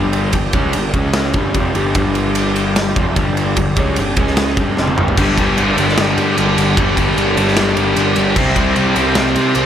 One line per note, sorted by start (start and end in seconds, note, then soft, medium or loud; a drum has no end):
0.00 0.31 G1 loud
0.00 0.33 G2 medium
0.00 0.33 D3 medium
0.00 0.34 G3 loud
0.00 0.92 G3 medium
0.00 0.92 D4 medium
0.00 0.92 G4 medium
0.13 ride medium
0.33 0.52 G1 medium
0.33 0.50 G2 medium
0.33 0.50 D3 medium
0.33 kick medium
0.33 ride loud
0.53 0.73 C#2 medium
0.53 0.74 C#3 medium
0.53 0.74 G#3 loud
0.53 0.74 C#4 loud
0.53 kick loud
0.53 ride medium
0.73 0.93 G1 medium
0.73 0.91 G2 medium
0.73 0.91 D3 medium
0.73 ride loud
0.94 1.32 C#2 loud
0.94 1.34 C#3 medium
0.94 1.35 G#3 medium
0.94 1.35 C#4 medium
0.94 1.35 G#4 medium
0.94 1.35 D#5 medium
0.94 kick loud
0.94 ride medium
1.13 snare loud
1.13 ride loud
1.33 1.53 G1 medium
1.33 1.55 G2 medium
1.33 1.55 D3 medium
1.33 4.15 G3 medium
1.33 1.55 G3 loud
1.33 4.15 D4 medium
1.33 4.15 G4 medium
1.33 kick loud
1.33 ride medium
1.54 1.74 F1 loud
1.54 1.75 F2 loud
1.54 1.75 C3 loud
1.54 1.75 F3 loud
1.54 kick loud
1.54 ride medium
1.75 1.94 G1 loud
1.75 1.94 G2 medium
1.75 1.94 D3 loud
1.75 1.95 G3 loud
1.75 ride medium
1.95 2.92 G1 medium
1.95 2.96 G2 medium
1.95 2.96 D3 loud
1.95 2.96 G3 loud
1.95 kick loud
1.95 ride medium
2.15 ride medium
2.35 ride medium
2.56 ride medium
2.76 snare loud
2.76 ride loud
2.96 3.15 F1 loud
2.96 3.16 F2 medium
2.96 3.16 C3 loud
2.96 3.17 F3 loud
2.96 kick loud
2.96 ride medium
3.16 3.54 G1 loud
3.16 3.56 G2 medium
3.16 3.57 D3 loud
3.16 3.57 G3 loud
3.16 kick loud
3.16 ride loud
3.37 ride medium
3.57 3.76 G1 medium
3.57 3.74 G2 medium
3.57 3.74 D3 medium
3.57 kick medium
3.57 ride loud
3.76 3.96 C#2 loud
3.76 3.97 C#3 loud
3.76 3.97 G#3 loud
3.76 3.98 C#4 loud
3.76 kick loud
3.76 ride medium
3.96 4.16 G1 medium
3.96 4.14 G2 medium
3.96 4.14 D3 medium
3.96 ride loud
4.16 4.55 C#2 loud
4.16 4.57 C#3 medium
4.16 4.57 G#3 loud
4.16 4.57 C#4 medium
4.16 4.58 C#4 loud
4.16 4.57 G#4 medium
4.16 4.57 D#5 medium
4.16 kick loud
4.16 ride medium
4.27 snare soft
4.37 snare loud
4.37 ride loud
4.56 4.76 G1 medium
4.56 4.77 G2 medium
4.56 4.78 D3 loud
4.56 5.17 G3 medium
4.56 4.78 G3 loud
4.56 5.17 D4 medium
4.56 5.16 G4 medium
4.56 kick loud
4.56 ride medium
4.77 4.96 F1 loud
4.77 4.98 F2 loud
4.77 4.98 C3 loud
4.77 4.98 F3 loud
4.77 snare medium
4.87 high tom medium
4.98 5.16 G1 loud
4.98 5.17 G2 medium
4.98 5.18 D3 loud
4.98 5.18 G3 loud
4.98 mid tom medium
5.08 floor tom medium
5.17 5.37 G1 medium
5.17 5.80 G2 medium
5.17 5.37 G2 medium
5.17 5.37 D3 loud
5.17 5.77 D3 medium
5.17 5.38 G3 loud
5.17 8.34 G3 medium
5.17 5.77 G3 loud
5.17 8.34 D4 medium
5.17 9.66 G4 medium
5.17 kick loud
5.17 crash loud
5.37 5.57 G1 medium
5.37 5.56 G2 medium
5.37 5.56 D3 medium
5.37 5.58 G3 loud
5.37 kick medium
5.37 ride medium
5.57 5.77 G1 loud
5.57 5.77 G2 loud
5.57 5.76 D3 loud
5.57 5.78 G3 loud
5.57 ride loud
5.77 5.97 G1 medium
5.77 5.96 G2 medium
5.77 6.76 G2 medium
5.77 5.97 D3 medium
5.77 6.77 D3 medium
5.77 6.79 G3 medium
5.77 5.99 G3 loud
5.77 ride medium
5.89 snare soft
5.97 6.16 G1 medium
5.97 6.17 G2 medium
5.97 6.18 D3 loud
5.97 6.19 G3 loud
5.97 snare loud
5.97 ride loud
6.17 6.36 G2 medium
6.17 6.37 G2 medium
6.17 6.38 D3 medium
6.17 6.39 G3 loud
6.17 ride medium
6.37 6.57 G1 medium
6.37 6.57 G2 loud
6.37 6.58 D3 loud
6.37 6.59 G3 loud
6.37 ride loud
6.57 6.76 G1 medium
6.57 6.77 G2 medium
6.57 6.77 D3 medium
6.57 6.78 G3 medium
6.57 ride medium
6.77 6.96 G1 loud
6.77 7.36 G2 medium
6.77 6.96 G2 loud
6.77 6.97 D3 loud
6.77 7.36 D3 loud
6.77 6.98 G3 loud
6.77 7.37 G3 loud
6.77 kick loud
6.77 ride loud
6.97 7.16 G1 medium
6.97 7.17 G2 medium
6.97 7.17 D3 medium
6.97 7.18 G3 medium
6.97 kick medium
6.97 ride medium
7.16 7.36 G1 loud
7.16 7.37 G2 loud
7.16 7.38 D3 loud
7.16 7.39 G3 loud
7.16 ride loud
7.37 7.56 G1 medium
7.37 7.56 G2 medium
7.37 8.36 G2 medium
7.37 8.36 D3 medium
7.37 7.57 D3 medium
7.37 8.37 G3 medium
7.37 7.58 G3 loud
7.37 ride medium
7.48 snare soft
7.56 7.76 G1 loud
7.56 7.76 G2 loud
7.56 7.77 D3 loud
7.56 7.78 G3 loud
7.56 snare loud
7.56 ride loud
7.77 7.96 G1 medium
7.77 7.96 G2 medium
7.77 7.97 D3 loud
7.77 7.99 G3 loud
7.77 ride medium
7.96 8.16 G1 medium
7.96 8.16 G2 loud
7.96 8.17 D3 loud
7.96 8.18 G3 loud
7.96 ride loud
8.16 8.35 G1 loud
8.16 8.35 G2 medium
8.16 8.36 D3 medium
8.16 8.37 G3 loud
8.16 ride medium
8.35 8.55 C2 loud
8.35 8.56 C3 loud
8.35 8.97 C3 medium
8.35 8.57 G3 loud
8.35 8.96 G3 loud
8.35 9.66 C4 medium
8.35 8.57 C4 loud
8.35 8.95 C4 loud
8.35 9.66 D5 medium
8.35 kick loud
8.35 crash loud
8.56 8.75 C2 loud
8.56 8.75 C3 medium
8.56 8.76 G3 medium
8.56 8.77 C4 medium
8.56 kick medium
8.56 ride medium
8.76 8.95 C2 loud
8.76 8.95 C3 loud
8.76 8.96 G3 loud
8.76 8.96 C4 loud
8.76 ride loud
8.95 9.15 C2 medium
8.95 9.15 C3 medium
8.95 9.66 C3 medium
8.95 9.16 G3 medium
8.95 9.66 G3 medium
8.95 9.66 C4 medium
8.95 9.16 C4 loud
8.95 ride medium
9.15 9.35 C2 medium
9.15 9.35 C3 loud
9.15 9.36 G3 medium
9.15 9.36 C4 loud
9.15 snare loud
9.15 ride loud
9.36 9.54 C3 medium
9.36 9.55 G3 loud
9.36 9.55 C4 loud
9.36 ride medium
9.55 9.66 C2 medium
9.55 9.66 C3 loud
9.55 9.66 G3 loud
9.55 9.66 C4 loud
9.55 ride loud